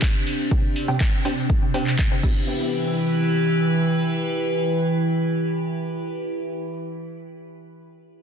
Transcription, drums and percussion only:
0.02 kick, clap, shaker
0.27 open hi-hat, shaker
0.40 shaker
0.51 kick, shaker
0.76 open hi-hat, shaker
0.89 shaker
1.01 kick, clap, shaker
1.25 open hi-hat, shaker
1.38 shaker
1.49 kick, shaker
1.74 open hi-hat, shaker
1.87 clap, shaker
1.99 kick, clap, shaker
2.23 kick, crash, shaker
2.35 shaker

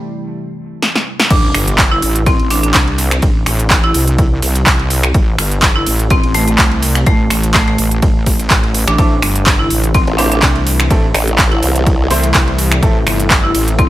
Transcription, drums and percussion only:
0.82 snare
0.95 snare
1.20 snare
1.30 kick, closed hi-hat, crash, ride
1.54 finger snap, open hi-hat, ride
1.68 closed hi-hat
1.78 kick, snare, clap, closed hi-hat, ride
2.02 open hi-hat, ride
2.16 closed hi-hat
2.26 kick, closed hi-hat, ride
2.39 ride
2.50 snare, open hi-hat, ride
2.63 closed hi-hat
2.74 kick, snare, clap, closed hi-hat, ride
2.88 ride
2.98 snare, open hi-hat, ride
3.11 finger snap, snare, closed hi-hat
3.22 kick, closed hi-hat, ride
3.46 finger snap, open hi-hat, ride
3.59 closed hi-hat
3.70 kick, snare, clap, closed hi-hat, ride
3.84 ride
3.94 open hi-hat, ride
4.08 closed hi-hat
4.18 kick, closed hi-hat, ride
4.42 snare, open hi-hat, ride
4.55 closed hi-hat, ride
4.66 kick, snare, clap, closed hi-hat, ride
4.79 ride
4.90 open hi-hat, ride
5.03 finger snap, closed hi-hat
5.14 kick, closed hi-hat, ride
5.38 finger snap, open hi-hat, ride
5.52 closed hi-hat
5.62 kick, snare, clap, closed hi-hat, ride
5.86 open hi-hat, ride
5.99 closed hi-hat
6.10 kick, closed hi-hat, ride
6.23 ride
6.34 snare, open hi-hat, ride
6.48 closed hi-hat
6.58 kick, snare, clap, closed hi-hat, ride
6.72 ride
6.83 snare, open hi-hat, ride
6.95 finger snap, snare, closed hi-hat
7.06 kick, closed hi-hat, ride
7.30 finger snap, open hi-hat, ride
7.43 closed hi-hat
7.54 kick, snare, clap, closed hi-hat, ride
7.68 ride
7.78 open hi-hat, ride
7.91 closed hi-hat
8.02 kick, closed hi-hat, ride
8.26 kick, snare, open hi-hat, ride
8.39 closed hi-hat, ride
8.50 kick, snare, clap, closed hi-hat, ride
8.64 ride
8.74 open hi-hat, ride
8.88 finger snap, closed hi-hat
8.98 kick, closed hi-hat, ride
9.22 finger snap, open hi-hat, ride
9.35 closed hi-hat
9.46 kick, snare, clap, closed hi-hat, ride
9.70 open hi-hat, ride
9.84 closed hi-hat
9.94 kick, closed hi-hat, ride
10.07 ride
10.18 snare, open hi-hat, ride
10.32 closed hi-hat
10.42 kick, snare, clap, closed hi-hat, ride
10.56 ride
10.67 snare, open hi-hat, ride
10.80 finger snap, snare, closed hi-hat
10.90 kick, closed hi-hat, ride
11.14 finger snap, open hi-hat, ride
11.28 closed hi-hat
11.38 kick, snare, clap, closed hi-hat, ride
11.52 ride
11.63 open hi-hat, ride
11.76 closed hi-hat
11.87 kick, closed hi-hat, ride
12.10 snare, open hi-hat, ride
12.23 closed hi-hat, ride
12.34 kick, snare, clap, closed hi-hat, ride
12.48 ride
12.59 open hi-hat, ride
12.72 finger snap, closed hi-hat
12.83 kick, closed hi-hat, ride
13.07 finger snap, open hi-hat, ride
13.20 closed hi-hat
13.30 kick, snare, clap, closed hi-hat, ride
13.55 open hi-hat, ride
13.68 closed hi-hat
13.79 kick, closed hi-hat, ride

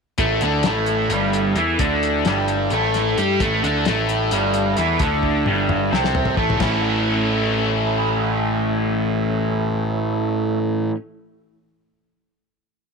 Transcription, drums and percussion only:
0.18 kick, closed hi-hat
0.41 closed hi-hat
0.63 snare, closed hi-hat
0.86 closed hi-hat
1.10 closed hi-hat
1.33 closed hi-hat
1.56 closed hi-hat
1.79 kick, closed hi-hat
2.03 closed hi-hat
2.25 snare, closed hi-hat
2.48 closed hi-hat
2.70 closed hi-hat
2.94 snare, closed hi-hat
3.18 closed hi-hat
3.40 kick, closed hi-hat
3.64 closed hi-hat
3.85 snare, closed hi-hat
4.09 closed hi-hat
4.31 closed hi-hat
4.54 closed hi-hat
4.77 snare, closed hi-hat
4.99 kick, closed hi-hat
5.23 kick
5.46 high tom
5.69 mid tom
5.94 snare
6.04 snare
6.15 mid tom
6.25 floor tom
6.37 kick
6.50 floor tom
6.60 kick, snare, crash

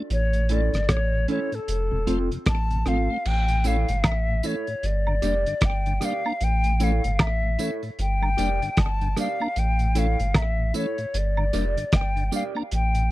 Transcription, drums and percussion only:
0.10 closed hi-hat
0.33 closed hi-hat
0.49 closed hi-hat
0.74 cross-stick, closed hi-hat
0.89 kick, cross-stick, closed hi-hat
1.28 closed hi-hat
1.52 closed hi-hat
1.68 closed hi-hat
2.07 closed hi-hat
2.31 closed hi-hat
2.46 kick, cross-stick, closed hi-hat
2.71 closed hi-hat
2.86 cross-stick, closed hi-hat
3.25 crash
3.48 closed hi-hat
3.64 closed hi-hat, tambourine
3.88 closed hi-hat
4.04 kick, cross-stick, closed hi-hat, high woodblock
4.43 closed hi-hat, tambourine
4.67 closed hi-hat
4.83 closed hi-hat
5.07 high woodblock
5.22 closed hi-hat, tambourine
5.46 closed hi-hat
5.61 kick, cross-stick, closed hi-hat
5.86 closed hi-hat
6.01 cross-stick, closed hi-hat, tambourine
6.26 high woodblock
6.41 closed hi-hat
6.64 closed hi-hat
6.80 closed hi-hat, tambourine
7.04 closed hi-hat
7.19 kick, cross-stick, closed hi-hat, high woodblock
7.59 closed hi-hat, tambourine
7.83 closed hi-hat
7.99 closed hi-hat
8.23 high woodblock
8.38 closed hi-hat, tambourine
8.62 closed hi-hat
8.77 kick, cross-stick, closed hi-hat
9.01 closed hi-hat
9.17 cross-stick, closed hi-hat, tambourine
9.41 high woodblock
9.56 closed hi-hat
9.79 closed hi-hat
9.95 closed hi-hat, tambourine
10.19 closed hi-hat
10.34 kick, cross-stick, closed hi-hat, high woodblock
10.74 closed hi-hat, tambourine
10.98 closed hi-hat
11.14 closed hi-hat
11.37 high woodblock
11.53 closed hi-hat, tambourine
11.77 closed hi-hat
11.92 kick, cross-stick, closed hi-hat
12.17 closed hi-hat
12.32 closed hi-hat, tambourine
12.56 high woodblock
12.71 closed hi-hat
12.95 closed hi-hat

